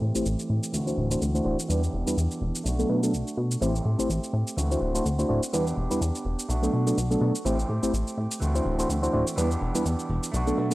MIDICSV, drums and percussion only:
0, 0, Header, 1, 2, 480
1, 0, Start_track
1, 0, Tempo, 480000
1, 1694, Time_signature, 4, 2, 24, 8
1, 10740, End_track
2, 0, Start_track
2, 0, Title_t, "Drums"
2, 153, Note_on_c, 9, 82, 60
2, 253, Note_off_c, 9, 82, 0
2, 258, Note_on_c, 9, 82, 53
2, 359, Note_off_c, 9, 82, 0
2, 392, Note_on_c, 9, 82, 29
2, 492, Note_off_c, 9, 82, 0
2, 632, Note_on_c, 9, 82, 56
2, 732, Note_off_c, 9, 82, 0
2, 738, Note_on_c, 9, 82, 49
2, 838, Note_off_c, 9, 82, 0
2, 874, Note_on_c, 9, 82, 30
2, 974, Note_off_c, 9, 82, 0
2, 1112, Note_on_c, 9, 82, 58
2, 1212, Note_off_c, 9, 82, 0
2, 1219, Note_on_c, 9, 82, 47
2, 1319, Note_off_c, 9, 82, 0
2, 1353, Note_on_c, 9, 82, 29
2, 1453, Note_off_c, 9, 82, 0
2, 1594, Note_on_c, 9, 82, 60
2, 1694, Note_off_c, 9, 82, 0
2, 1700, Note_on_c, 9, 82, 51
2, 1800, Note_off_c, 9, 82, 0
2, 1834, Note_on_c, 9, 82, 29
2, 1934, Note_off_c, 9, 82, 0
2, 2074, Note_on_c, 9, 82, 62
2, 2174, Note_off_c, 9, 82, 0
2, 2180, Note_on_c, 9, 82, 55
2, 2280, Note_off_c, 9, 82, 0
2, 2312, Note_on_c, 9, 82, 29
2, 2412, Note_off_c, 9, 82, 0
2, 2552, Note_on_c, 9, 82, 60
2, 2652, Note_off_c, 9, 82, 0
2, 2659, Note_on_c, 9, 82, 48
2, 2759, Note_off_c, 9, 82, 0
2, 2794, Note_on_c, 9, 82, 30
2, 2894, Note_off_c, 9, 82, 0
2, 3034, Note_on_c, 9, 82, 59
2, 3134, Note_off_c, 9, 82, 0
2, 3140, Note_on_c, 9, 82, 50
2, 3240, Note_off_c, 9, 82, 0
2, 3274, Note_on_c, 9, 82, 30
2, 3374, Note_off_c, 9, 82, 0
2, 3513, Note_on_c, 9, 82, 62
2, 3613, Note_off_c, 9, 82, 0
2, 3618, Note_on_c, 9, 54, 39
2, 3620, Note_on_c, 9, 82, 52
2, 3718, Note_off_c, 9, 54, 0
2, 3720, Note_off_c, 9, 82, 0
2, 3755, Note_on_c, 9, 82, 33
2, 3855, Note_off_c, 9, 82, 0
2, 3857, Note_on_c, 9, 54, 84
2, 3957, Note_off_c, 9, 54, 0
2, 3994, Note_on_c, 9, 82, 63
2, 4094, Note_off_c, 9, 82, 0
2, 4101, Note_on_c, 9, 82, 53
2, 4201, Note_off_c, 9, 82, 0
2, 4236, Note_on_c, 9, 82, 30
2, 4335, Note_on_c, 9, 54, 78
2, 4336, Note_off_c, 9, 82, 0
2, 4435, Note_off_c, 9, 54, 0
2, 4474, Note_on_c, 9, 82, 59
2, 4574, Note_off_c, 9, 82, 0
2, 4581, Note_on_c, 9, 82, 50
2, 4681, Note_off_c, 9, 82, 0
2, 4714, Note_on_c, 9, 82, 31
2, 4812, Note_on_c, 9, 54, 97
2, 4814, Note_off_c, 9, 82, 0
2, 4912, Note_off_c, 9, 54, 0
2, 4950, Note_on_c, 9, 54, 49
2, 4952, Note_on_c, 9, 82, 65
2, 5050, Note_off_c, 9, 54, 0
2, 5052, Note_off_c, 9, 82, 0
2, 5058, Note_on_c, 9, 82, 52
2, 5158, Note_off_c, 9, 82, 0
2, 5190, Note_on_c, 9, 82, 32
2, 5290, Note_off_c, 9, 82, 0
2, 5298, Note_on_c, 9, 54, 91
2, 5398, Note_off_c, 9, 54, 0
2, 5429, Note_on_c, 9, 82, 67
2, 5529, Note_off_c, 9, 82, 0
2, 5534, Note_on_c, 9, 54, 37
2, 5536, Note_on_c, 9, 82, 53
2, 5634, Note_off_c, 9, 54, 0
2, 5636, Note_off_c, 9, 82, 0
2, 5671, Note_on_c, 9, 82, 32
2, 5771, Note_off_c, 9, 82, 0
2, 5773, Note_on_c, 9, 54, 91
2, 5873, Note_off_c, 9, 54, 0
2, 5912, Note_on_c, 9, 82, 66
2, 5915, Note_on_c, 9, 54, 46
2, 6012, Note_off_c, 9, 82, 0
2, 6015, Note_off_c, 9, 54, 0
2, 6018, Note_on_c, 9, 82, 56
2, 6118, Note_off_c, 9, 82, 0
2, 6152, Note_on_c, 9, 82, 32
2, 6249, Note_on_c, 9, 54, 73
2, 6252, Note_off_c, 9, 82, 0
2, 6349, Note_off_c, 9, 54, 0
2, 6386, Note_on_c, 9, 54, 50
2, 6392, Note_on_c, 9, 82, 62
2, 6486, Note_off_c, 9, 54, 0
2, 6492, Note_off_c, 9, 82, 0
2, 6498, Note_on_c, 9, 82, 53
2, 6598, Note_off_c, 9, 82, 0
2, 6633, Note_on_c, 9, 82, 33
2, 6733, Note_off_c, 9, 82, 0
2, 6740, Note_on_c, 9, 54, 77
2, 6840, Note_off_c, 9, 54, 0
2, 6869, Note_on_c, 9, 54, 51
2, 6873, Note_on_c, 9, 82, 66
2, 6969, Note_off_c, 9, 54, 0
2, 6973, Note_off_c, 9, 82, 0
2, 6979, Note_on_c, 9, 82, 55
2, 6982, Note_on_c, 9, 54, 37
2, 7079, Note_off_c, 9, 82, 0
2, 7082, Note_off_c, 9, 54, 0
2, 7113, Note_on_c, 9, 82, 32
2, 7213, Note_off_c, 9, 82, 0
2, 7214, Note_on_c, 9, 54, 84
2, 7314, Note_off_c, 9, 54, 0
2, 7351, Note_on_c, 9, 54, 44
2, 7353, Note_on_c, 9, 82, 66
2, 7451, Note_off_c, 9, 54, 0
2, 7453, Note_off_c, 9, 82, 0
2, 7460, Note_on_c, 9, 82, 59
2, 7560, Note_off_c, 9, 82, 0
2, 7593, Note_on_c, 9, 82, 35
2, 7692, Note_on_c, 9, 54, 79
2, 7693, Note_off_c, 9, 82, 0
2, 7792, Note_off_c, 9, 54, 0
2, 7831, Note_on_c, 9, 54, 41
2, 7833, Note_on_c, 9, 82, 66
2, 7931, Note_off_c, 9, 54, 0
2, 7933, Note_off_c, 9, 82, 0
2, 7935, Note_on_c, 9, 54, 35
2, 7940, Note_on_c, 9, 82, 59
2, 8035, Note_off_c, 9, 54, 0
2, 8040, Note_off_c, 9, 82, 0
2, 8073, Note_on_c, 9, 82, 31
2, 8172, Note_on_c, 9, 54, 73
2, 8173, Note_off_c, 9, 82, 0
2, 8272, Note_off_c, 9, 54, 0
2, 8305, Note_on_c, 9, 54, 42
2, 8313, Note_on_c, 9, 82, 64
2, 8405, Note_off_c, 9, 54, 0
2, 8411, Note_on_c, 9, 54, 39
2, 8413, Note_off_c, 9, 82, 0
2, 8419, Note_on_c, 9, 82, 54
2, 8511, Note_off_c, 9, 54, 0
2, 8519, Note_off_c, 9, 82, 0
2, 8554, Note_on_c, 9, 82, 34
2, 8651, Note_on_c, 9, 54, 82
2, 8654, Note_off_c, 9, 82, 0
2, 8751, Note_off_c, 9, 54, 0
2, 8791, Note_on_c, 9, 54, 49
2, 8793, Note_on_c, 9, 82, 65
2, 8891, Note_off_c, 9, 54, 0
2, 8893, Note_off_c, 9, 82, 0
2, 8899, Note_on_c, 9, 82, 55
2, 8901, Note_on_c, 9, 54, 40
2, 8999, Note_off_c, 9, 82, 0
2, 9001, Note_off_c, 9, 54, 0
2, 9033, Note_on_c, 9, 82, 32
2, 9133, Note_off_c, 9, 82, 0
2, 9137, Note_on_c, 9, 54, 77
2, 9237, Note_off_c, 9, 54, 0
2, 9272, Note_on_c, 9, 54, 44
2, 9273, Note_on_c, 9, 82, 67
2, 9372, Note_off_c, 9, 54, 0
2, 9373, Note_off_c, 9, 82, 0
2, 9375, Note_on_c, 9, 54, 36
2, 9379, Note_on_c, 9, 82, 58
2, 9475, Note_off_c, 9, 54, 0
2, 9479, Note_off_c, 9, 82, 0
2, 9511, Note_on_c, 9, 82, 33
2, 9611, Note_off_c, 9, 82, 0
2, 9612, Note_on_c, 9, 54, 84
2, 9712, Note_off_c, 9, 54, 0
2, 9751, Note_on_c, 9, 82, 64
2, 9756, Note_on_c, 9, 54, 45
2, 9851, Note_off_c, 9, 82, 0
2, 9856, Note_off_c, 9, 54, 0
2, 9856, Note_on_c, 9, 54, 36
2, 9858, Note_on_c, 9, 82, 58
2, 9956, Note_off_c, 9, 54, 0
2, 9958, Note_off_c, 9, 82, 0
2, 9993, Note_on_c, 9, 82, 33
2, 10093, Note_off_c, 9, 82, 0
2, 10097, Note_on_c, 9, 54, 88
2, 10197, Note_off_c, 9, 54, 0
2, 10233, Note_on_c, 9, 82, 63
2, 10235, Note_on_c, 9, 54, 50
2, 10333, Note_off_c, 9, 82, 0
2, 10335, Note_off_c, 9, 54, 0
2, 10339, Note_on_c, 9, 82, 50
2, 10439, Note_off_c, 9, 82, 0
2, 10473, Note_on_c, 9, 82, 33
2, 10573, Note_off_c, 9, 82, 0
2, 10577, Note_on_c, 9, 54, 79
2, 10677, Note_off_c, 9, 54, 0
2, 10740, End_track
0, 0, End_of_file